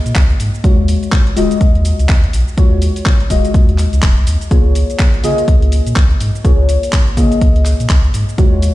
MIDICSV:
0, 0, Header, 1, 4, 480
1, 0, Start_track
1, 0, Key_signature, -5, "major"
1, 0, Tempo, 483871
1, 635, Time_signature, 4, 2, 24, 8
1, 8672, End_track
2, 0, Start_track
2, 0, Title_t, "Synth stab"
2, 0, Program_c, 0, 62
2, 0, Note_on_c, 0, 58, 91
2, 0, Note_on_c, 0, 65, 88
2, 0, Note_on_c, 0, 68, 83
2, 0, Note_on_c, 0, 75, 101
2, 609, Note_off_c, 0, 58, 0
2, 611, Note_off_c, 0, 65, 0
2, 612, Note_off_c, 0, 68, 0
2, 614, Note_off_c, 0, 75, 0
2, 629, Note_on_c, 0, 56, 83
2, 633, Note_on_c, 0, 65, 70
2, 636, Note_on_c, 0, 66, 72
2, 640, Note_on_c, 0, 73, 88
2, 1329, Note_off_c, 0, 56, 0
2, 1331, Note_off_c, 0, 65, 0
2, 1332, Note_off_c, 0, 66, 0
2, 1334, Note_off_c, 0, 73, 0
2, 1350, Note_on_c, 0, 56, 93
2, 1353, Note_on_c, 0, 65, 84
2, 1357, Note_on_c, 0, 66, 85
2, 1360, Note_on_c, 0, 75, 99
2, 2529, Note_off_c, 0, 56, 0
2, 2531, Note_off_c, 0, 65, 0
2, 2533, Note_off_c, 0, 66, 0
2, 2534, Note_off_c, 0, 75, 0
2, 2550, Note_on_c, 0, 56, 75
2, 2553, Note_on_c, 0, 65, 69
2, 2557, Note_on_c, 0, 66, 71
2, 2560, Note_on_c, 0, 73, 89
2, 3249, Note_off_c, 0, 56, 0
2, 3251, Note_off_c, 0, 65, 0
2, 3253, Note_off_c, 0, 66, 0
2, 3254, Note_off_c, 0, 73, 0
2, 3270, Note_on_c, 0, 56, 91
2, 3273, Note_on_c, 0, 65, 85
2, 3277, Note_on_c, 0, 66, 84
2, 3280, Note_on_c, 0, 75, 102
2, 4449, Note_off_c, 0, 56, 0
2, 4451, Note_off_c, 0, 65, 0
2, 4453, Note_off_c, 0, 66, 0
2, 4454, Note_off_c, 0, 75, 0
2, 4470, Note_on_c, 0, 58, 78
2, 4473, Note_on_c, 0, 65, 72
2, 4477, Note_on_c, 0, 68, 71
2, 4480, Note_on_c, 0, 73, 88
2, 5169, Note_off_c, 0, 58, 0
2, 5171, Note_off_c, 0, 65, 0
2, 5173, Note_off_c, 0, 68, 0
2, 5174, Note_off_c, 0, 73, 0
2, 5190, Note_on_c, 0, 58, 89
2, 5193, Note_on_c, 0, 65, 86
2, 5197, Note_on_c, 0, 68, 85
2, 5200, Note_on_c, 0, 75, 103
2, 6369, Note_off_c, 0, 58, 0
2, 6371, Note_off_c, 0, 65, 0
2, 6373, Note_off_c, 0, 68, 0
2, 6374, Note_off_c, 0, 75, 0
2, 6389, Note_on_c, 0, 58, 77
2, 6393, Note_on_c, 0, 65, 73
2, 6396, Note_on_c, 0, 68, 70
2, 6400, Note_on_c, 0, 73, 89
2, 7089, Note_off_c, 0, 58, 0
2, 7091, Note_off_c, 0, 65, 0
2, 7092, Note_off_c, 0, 68, 0
2, 7094, Note_off_c, 0, 73, 0
2, 7109, Note_on_c, 0, 58, 92
2, 7113, Note_on_c, 0, 65, 82
2, 7116, Note_on_c, 0, 68, 87
2, 7120, Note_on_c, 0, 75, 104
2, 8289, Note_off_c, 0, 58, 0
2, 8291, Note_off_c, 0, 65, 0
2, 8292, Note_off_c, 0, 68, 0
2, 8294, Note_off_c, 0, 75, 0
2, 8309, Note_on_c, 0, 56, 78
2, 8313, Note_on_c, 0, 65, 76
2, 8316, Note_on_c, 0, 66, 76
2, 8320, Note_on_c, 0, 73, 89
2, 8672, Note_off_c, 0, 56, 0
2, 8672, Note_off_c, 0, 65, 0
2, 8672, Note_off_c, 0, 66, 0
2, 8672, Note_off_c, 0, 73, 0
2, 8672, End_track
3, 0, Start_track
3, 0, Title_t, "Sub bass"
3, 0, Program_c, 1, 38
3, 57, Note_on_c, 1, 46, 102
3, 128, Note_off_c, 1, 46, 0
3, 155, Note_on_c, 1, 37, 88
3, 342, Note_off_c, 1, 37, 0
3, 394, Note_on_c, 1, 44, 94
3, 499, Note_off_c, 1, 44, 0
3, 635, Note_on_c, 1, 39, 99
3, 956, Note_off_c, 1, 39, 0
3, 1354, Note_on_c, 1, 27, 85
3, 1459, Note_off_c, 1, 27, 0
3, 1595, Note_on_c, 1, 39, 101
3, 1916, Note_off_c, 1, 39, 0
3, 1978, Note_on_c, 1, 37, 101
3, 2048, Note_off_c, 1, 37, 0
3, 2075, Note_on_c, 1, 39, 84
3, 2262, Note_off_c, 1, 39, 0
3, 2315, Note_on_c, 1, 34, 94
3, 2419, Note_off_c, 1, 34, 0
3, 2555, Note_on_c, 1, 39, 100
3, 2876, Note_off_c, 1, 39, 0
3, 3275, Note_on_c, 1, 27, 83
3, 3379, Note_off_c, 1, 27, 0
3, 3515, Note_on_c, 1, 39, 95
3, 3836, Note_off_c, 1, 39, 0
3, 3898, Note_on_c, 1, 37, 97
3, 3968, Note_off_c, 1, 37, 0
3, 3995, Note_on_c, 1, 27, 79
3, 4138, Note_on_c, 1, 37, 94
3, 4153, Note_off_c, 1, 27, 0
3, 4209, Note_off_c, 1, 37, 0
3, 4235, Note_on_c, 1, 39, 96
3, 4339, Note_off_c, 1, 39, 0
3, 4475, Note_on_c, 1, 37, 98
3, 4796, Note_off_c, 1, 37, 0
3, 5195, Note_on_c, 1, 49, 84
3, 5299, Note_off_c, 1, 49, 0
3, 5435, Note_on_c, 1, 37, 95
3, 5756, Note_off_c, 1, 37, 0
3, 5818, Note_on_c, 1, 46, 97
3, 5889, Note_off_c, 1, 46, 0
3, 5915, Note_on_c, 1, 37, 88
3, 6102, Note_off_c, 1, 37, 0
3, 6155, Note_on_c, 1, 44, 93
3, 6259, Note_off_c, 1, 44, 0
3, 6395, Note_on_c, 1, 37, 98
3, 6716, Note_off_c, 1, 37, 0
3, 7115, Note_on_c, 1, 49, 81
3, 7219, Note_off_c, 1, 49, 0
3, 7355, Note_on_c, 1, 37, 95
3, 7676, Note_off_c, 1, 37, 0
3, 7738, Note_on_c, 1, 46, 100
3, 7808, Note_off_c, 1, 46, 0
3, 7835, Note_on_c, 1, 37, 91
3, 8022, Note_off_c, 1, 37, 0
3, 8075, Note_on_c, 1, 44, 97
3, 8179, Note_off_c, 1, 44, 0
3, 8315, Note_on_c, 1, 39, 96
3, 8636, Note_off_c, 1, 39, 0
3, 8672, End_track
4, 0, Start_track
4, 0, Title_t, "Drums"
4, 58, Note_on_c, 9, 42, 51
4, 61, Note_on_c, 9, 82, 42
4, 151, Note_on_c, 9, 39, 127
4, 155, Note_off_c, 9, 42, 0
4, 155, Note_on_c, 9, 36, 122
4, 155, Note_on_c, 9, 42, 85
4, 158, Note_off_c, 9, 82, 0
4, 158, Note_on_c, 9, 82, 33
4, 251, Note_off_c, 9, 39, 0
4, 254, Note_off_c, 9, 36, 0
4, 254, Note_off_c, 9, 42, 0
4, 257, Note_off_c, 9, 82, 0
4, 298, Note_on_c, 9, 42, 37
4, 395, Note_on_c, 9, 46, 105
4, 397, Note_off_c, 9, 42, 0
4, 398, Note_on_c, 9, 82, 74
4, 494, Note_off_c, 9, 46, 0
4, 497, Note_off_c, 9, 82, 0
4, 542, Note_on_c, 9, 82, 41
4, 635, Note_on_c, 9, 36, 127
4, 635, Note_on_c, 9, 42, 78
4, 638, Note_off_c, 9, 82, 0
4, 638, Note_on_c, 9, 82, 31
4, 734, Note_off_c, 9, 36, 0
4, 735, Note_off_c, 9, 42, 0
4, 738, Note_off_c, 9, 82, 0
4, 875, Note_on_c, 9, 46, 107
4, 878, Note_on_c, 9, 82, 72
4, 974, Note_off_c, 9, 46, 0
4, 978, Note_off_c, 9, 82, 0
4, 1019, Note_on_c, 9, 42, 35
4, 1022, Note_on_c, 9, 82, 42
4, 1112, Note_on_c, 9, 39, 120
4, 1115, Note_off_c, 9, 42, 0
4, 1115, Note_on_c, 9, 36, 124
4, 1115, Note_on_c, 9, 42, 78
4, 1118, Note_off_c, 9, 82, 0
4, 1118, Note_on_c, 9, 82, 32
4, 1211, Note_off_c, 9, 39, 0
4, 1214, Note_off_c, 9, 36, 0
4, 1215, Note_off_c, 9, 42, 0
4, 1217, Note_off_c, 9, 82, 0
4, 1259, Note_on_c, 9, 42, 36
4, 1355, Note_on_c, 9, 46, 110
4, 1358, Note_off_c, 9, 42, 0
4, 1359, Note_on_c, 9, 82, 71
4, 1455, Note_off_c, 9, 46, 0
4, 1458, Note_off_c, 9, 82, 0
4, 1499, Note_on_c, 9, 42, 53
4, 1502, Note_on_c, 9, 82, 42
4, 1595, Note_off_c, 9, 42, 0
4, 1595, Note_on_c, 9, 36, 122
4, 1595, Note_on_c, 9, 42, 80
4, 1598, Note_off_c, 9, 82, 0
4, 1598, Note_on_c, 9, 82, 32
4, 1694, Note_off_c, 9, 36, 0
4, 1694, Note_off_c, 9, 42, 0
4, 1697, Note_off_c, 9, 82, 0
4, 1739, Note_on_c, 9, 42, 36
4, 1835, Note_on_c, 9, 46, 101
4, 1838, Note_off_c, 9, 42, 0
4, 1838, Note_on_c, 9, 82, 72
4, 1934, Note_off_c, 9, 46, 0
4, 1937, Note_off_c, 9, 82, 0
4, 1978, Note_on_c, 9, 42, 50
4, 1982, Note_on_c, 9, 82, 41
4, 2072, Note_on_c, 9, 39, 121
4, 2075, Note_off_c, 9, 42, 0
4, 2075, Note_on_c, 9, 36, 122
4, 2075, Note_on_c, 9, 42, 79
4, 2078, Note_off_c, 9, 82, 0
4, 2078, Note_on_c, 9, 82, 33
4, 2171, Note_off_c, 9, 39, 0
4, 2174, Note_off_c, 9, 36, 0
4, 2174, Note_off_c, 9, 42, 0
4, 2178, Note_off_c, 9, 82, 0
4, 2219, Note_on_c, 9, 42, 35
4, 2315, Note_on_c, 9, 46, 108
4, 2318, Note_off_c, 9, 42, 0
4, 2319, Note_on_c, 9, 82, 71
4, 2415, Note_off_c, 9, 46, 0
4, 2418, Note_off_c, 9, 82, 0
4, 2462, Note_on_c, 9, 82, 39
4, 2555, Note_on_c, 9, 36, 124
4, 2555, Note_on_c, 9, 42, 74
4, 2558, Note_off_c, 9, 82, 0
4, 2558, Note_on_c, 9, 82, 33
4, 2654, Note_off_c, 9, 36, 0
4, 2654, Note_off_c, 9, 42, 0
4, 2657, Note_off_c, 9, 82, 0
4, 2795, Note_on_c, 9, 46, 104
4, 2798, Note_on_c, 9, 82, 74
4, 2894, Note_off_c, 9, 46, 0
4, 2897, Note_off_c, 9, 82, 0
4, 2939, Note_on_c, 9, 46, 62
4, 2942, Note_on_c, 9, 82, 42
4, 3032, Note_on_c, 9, 39, 118
4, 3035, Note_on_c, 9, 36, 124
4, 3035, Note_on_c, 9, 42, 75
4, 3038, Note_off_c, 9, 46, 0
4, 3038, Note_off_c, 9, 82, 0
4, 3038, Note_on_c, 9, 82, 33
4, 3131, Note_off_c, 9, 39, 0
4, 3134, Note_off_c, 9, 36, 0
4, 3135, Note_off_c, 9, 42, 0
4, 3138, Note_off_c, 9, 82, 0
4, 3179, Note_on_c, 9, 42, 35
4, 3275, Note_on_c, 9, 36, 64
4, 3275, Note_on_c, 9, 46, 110
4, 3278, Note_off_c, 9, 42, 0
4, 3278, Note_on_c, 9, 82, 78
4, 3374, Note_off_c, 9, 36, 0
4, 3374, Note_off_c, 9, 46, 0
4, 3378, Note_off_c, 9, 82, 0
4, 3419, Note_on_c, 9, 42, 50
4, 3422, Note_on_c, 9, 82, 44
4, 3515, Note_off_c, 9, 42, 0
4, 3515, Note_on_c, 9, 36, 121
4, 3515, Note_on_c, 9, 42, 81
4, 3518, Note_off_c, 9, 82, 0
4, 3518, Note_on_c, 9, 82, 34
4, 3614, Note_off_c, 9, 36, 0
4, 3614, Note_off_c, 9, 42, 0
4, 3617, Note_off_c, 9, 82, 0
4, 3658, Note_on_c, 9, 42, 36
4, 3752, Note_on_c, 9, 39, 34
4, 3755, Note_on_c, 9, 46, 102
4, 3758, Note_off_c, 9, 42, 0
4, 3758, Note_on_c, 9, 82, 74
4, 3851, Note_off_c, 9, 39, 0
4, 3854, Note_off_c, 9, 46, 0
4, 3857, Note_off_c, 9, 82, 0
4, 3898, Note_on_c, 9, 42, 48
4, 3901, Note_on_c, 9, 82, 43
4, 3991, Note_on_c, 9, 39, 120
4, 3995, Note_off_c, 9, 42, 0
4, 3995, Note_on_c, 9, 36, 123
4, 3995, Note_on_c, 9, 42, 77
4, 3998, Note_off_c, 9, 82, 0
4, 3998, Note_on_c, 9, 82, 32
4, 4091, Note_off_c, 9, 39, 0
4, 4094, Note_off_c, 9, 36, 0
4, 4094, Note_off_c, 9, 42, 0
4, 4097, Note_off_c, 9, 82, 0
4, 4138, Note_on_c, 9, 42, 34
4, 4235, Note_on_c, 9, 46, 110
4, 4238, Note_off_c, 9, 42, 0
4, 4238, Note_on_c, 9, 82, 73
4, 4334, Note_off_c, 9, 46, 0
4, 4338, Note_off_c, 9, 82, 0
4, 4378, Note_on_c, 9, 42, 34
4, 4382, Note_on_c, 9, 82, 40
4, 4475, Note_off_c, 9, 42, 0
4, 4475, Note_on_c, 9, 36, 119
4, 4475, Note_on_c, 9, 42, 74
4, 4478, Note_off_c, 9, 82, 0
4, 4478, Note_on_c, 9, 82, 35
4, 4574, Note_off_c, 9, 36, 0
4, 4574, Note_off_c, 9, 42, 0
4, 4577, Note_off_c, 9, 82, 0
4, 4715, Note_on_c, 9, 46, 106
4, 4718, Note_on_c, 9, 82, 78
4, 4814, Note_off_c, 9, 46, 0
4, 4817, Note_off_c, 9, 82, 0
4, 4858, Note_on_c, 9, 42, 34
4, 4861, Note_on_c, 9, 82, 44
4, 4952, Note_on_c, 9, 39, 113
4, 4955, Note_off_c, 9, 42, 0
4, 4955, Note_on_c, 9, 36, 122
4, 4955, Note_on_c, 9, 42, 77
4, 4958, Note_off_c, 9, 82, 0
4, 4958, Note_on_c, 9, 82, 34
4, 5051, Note_off_c, 9, 39, 0
4, 5054, Note_off_c, 9, 36, 0
4, 5054, Note_off_c, 9, 42, 0
4, 5057, Note_off_c, 9, 82, 0
4, 5098, Note_on_c, 9, 42, 36
4, 5195, Note_on_c, 9, 46, 103
4, 5198, Note_off_c, 9, 42, 0
4, 5198, Note_on_c, 9, 82, 80
4, 5294, Note_off_c, 9, 46, 0
4, 5297, Note_off_c, 9, 82, 0
4, 5338, Note_on_c, 9, 42, 51
4, 5342, Note_on_c, 9, 82, 44
4, 5435, Note_off_c, 9, 42, 0
4, 5435, Note_on_c, 9, 36, 110
4, 5435, Note_on_c, 9, 42, 81
4, 5438, Note_off_c, 9, 82, 0
4, 5438, Note_on_c, 9, 82, 35
4, 5534, Note_off_c, 9, 36, 0
4, 5534, Note_off_c, 9, 42, 0
4, 5537, Note_off_c, 9, 82, 0
4, 5579, Note_on_c, 9, 42, 35
4, 5675, Note_on_c, 9, 46, 102
4, 5678, Note_off_c, 9, 42, 0
4, 5678, Note_on_c, 9, 82, 74
4, 5774, Note_off_c, 9, 46, 0
4, 5777, Note_off_c, 9, 82, 0
4, 5818, Note_on_c, 9, 42, 49
4, 5821, Note_on_c, 9, 82, 45
4, 5912, Note_on_c, 9, 39, 116
4, 5915, Note_off_c, 9, 42, 0
4, 5915, Note_on_c, 9, 36, 119
4, 5915, Note_on_c, 9, 42, 81
4, 5918, Note_off_c, 9, 82, 0
4, 5918, Note_on_c, 9, 82, 34
4, 6011, Note_off_c, 9, 39, 0
4, 6014, Note_off_c, 9, 36, 0
4, 6014, Note_off_c, 9, 42, 0
4, 6017, Note_off_c, 9, 82, 0
4, 6058, Note_on_c, 9, 42, 35
4, 6155, Note_on_c, 9, 46, 106
4, 6158, Note_off_c, 9, 42, 0
4, 6158, Note_on_c, 9, 82, 79
4, 6255, Note_off_c, 9, 46, 0
4, 6258, Note_off_c, 9, 82, 0
4, 6302, Note_on_c, 9, 82, 44
4, 6395, Note_on_c, 9, 36, 118
4, 6395, Note_on_c, 9, 42, 77
4, 6398, Note_off_c, 9, 82, 0
4, 6398, Note_on_c, 9, 82, 35
4, 6494, Note_off_c, 9, 36, 0
4, 6494, Note_off_c, 9, 42, 0
4, 6497, Note_off_c, 9, 82, 0
4, 6635, Note_on_c, 9, 46, 100
4, 6638, Note_on_c, 9, 82, 79
4, 6734, Note_off_c, 9, 46, 0
4, 6737, Note_off_c, 9, 82, 0
4, 6778, Note_on_c, 9, 46, 59
4, 6781, Note_on_c, 9, 82, 46
4, 6871, Note_on_c, 9, 39, 114
4, 6875, Note_on_c, 9, 36, 114
4, 6875, Note_on_c, 9, 42, 81
4, 6877, Note_off_c, 9, 46, 0
4, 6878, Note_off_c, 9, 82, 0
4, 6878, Note_on_c, 9, 82, 36
4, 6970, Note_off_c, 9, 39, 0
4, 6974, Note_off_c, 9, 36, 0
4, 6974, Note_off_c, 9, 42, 0
4, 6977, Note_off_c, 9, 82, 0
4, 7018, Note_on_c, 9, 42, 36
4, 7115, Note_on_c, 9, 36, 60
4, 7115, Note_on_c, 9, 46, 102
4, 7117, Note_off_c, 9, 42, 0
4, 7118, Note_on_c, 9, 82, 81
4, 7214, Note_off_c, 9, 36, 0
4, 7214, Note_off_c, 9, 46, 0
4, 7217, Note_off_c, 9, 82, 0
4, 7258, Note_on_c, 9, 42, 53
4, 7261, Note_on_c, 9, 82, 47
4, 7355, Note_off_c, 9, 42, 0
4, 7355, Note_on_c, 9, 36, 108
4, 7355, Note_on_c, 9, 42, 80
4, 7358, Note_off_c, 9, 82, 0
4, 7358, Note_on_c, 9, 82, 37
4, 7454, Note_off_c, 9, 36, 0
4, 7454, Note_off_c, 9, 42, 0
4, 7457, Note_off_c, 9, 82, 0
4, 7498, Note_on_c, 9, 42, 36
4, 7591, Note_on_c, 9, 39, 34
4, 7595, Note_on_c, 9, 46, 100
4, 7597, Note_off_c, 9, 42, 0
4, 7598, Note_on_c, 9, 82, 82
4, 7690, Note_off_c, 9, 39, 0
4, 7694, Note_off_c, 9, 46, 0
4, 7697, Note_off_c, 9, 82, 0
4, 7738, Note_on_c, 9, 42, 51
4, 7741, Note_on_c, 9, 82, 45
4, 7831, Note_on_c, 9, 39, 119
4, 7835, Note_off_c, 9, 42, 0
4, 7835, Note_on_c, 9, 36, 117
4, 7835, Note_on_c, 9, 42, 80
4, 7838, Note_off_c, 9, 82, 0
4, 7838, Note_on_c, 9, 82, 37
4, 7930, Note_off_c, 9, 39, 0
4, 7934, Note_off_c, 9, 36, 0
4, 7934, Note_off_c, 9, 42, 0
4, 7937, Note_off_c, 9, 82, 0
4, 7978, Note_on_c, 9, 42, 37
4, 8075, Note_on_c, 9, 46, 98
4, 8077, Note_off_c, 9, 42, 0
4, 8078, Note_on_c, 9, 82, 78
4, 8174, Note_off_c, 9, 46, 0
4, 8177, Note_off_c, 9, 82, 0
4, 8221, Note_on_c, 9, 82, 45
4, 8315, Note_on_c, 9, 36, 116
4, 8315, Note_on_c, 9, 42, 79
4, 8318, Note_off_c, 9, 82, 0
4, 8318, Note_on_c, 9, 82, 35
4, 8414, Note_off_c, 9, 36, 0
4, 8414, Note_off_c, 9, 42, 0
4, 8417, Note_off_c, 9, 82, 0
4, 8555, Note_on_c, 9, 46, 99
4, 8558, Note_on_c, 9, 82, 79
4, 8654, Note_off_c, 9, 46, 0
4, 8657, Note_off_c, 9, 82, 0
4, 8672, End_track
0, 0, End_of_file